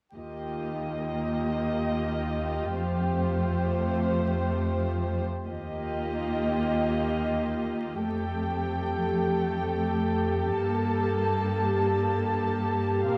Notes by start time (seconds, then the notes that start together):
0.15 D#2 A#3 F4 G4 D#5
2.73 F2 A3 C5
5.46 D#2 A#3 F4 G4 D#5
8.04 F2 A3 G4 A4 G5
10.57 G2 A#3 A5
13.08 A#2 C4 A#4 F5